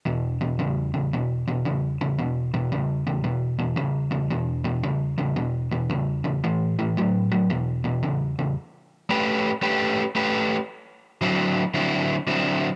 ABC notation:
X:1
M:4/4
L:1/8
Q:"Swing" 1/4=113
K:Edor
V:1 name="Overdriven electric guitar" clef=bass
[E,,B,,] [E,,B,,] [E,,C,] [E,,C,] [E,,B,,] [E,,B,,] [E,,C,] [E,,C,] | [E,,B,,] [E,,B,,] [E,,C,] [E,,C,] [E,,B,,] [E,,B,,] [E,,C,] [E,,C,] | [E,,B,,] [E,,B,,] [E,,C,] [E,,C,] [E,,B,,] [E,,B,,] [E,,C,] [E,,C,] | [A,,E,] [A,,E,] [A,,F,] [A,,F,] [E,,B,,] [E,,B,,] [E,,C,] [E,,C,] |
z2 [A,CGB] z [A,CGB] z [A,CGB] z | z2 [D,F,=CE] z [D,F,CE] z [D,F,CE] z |]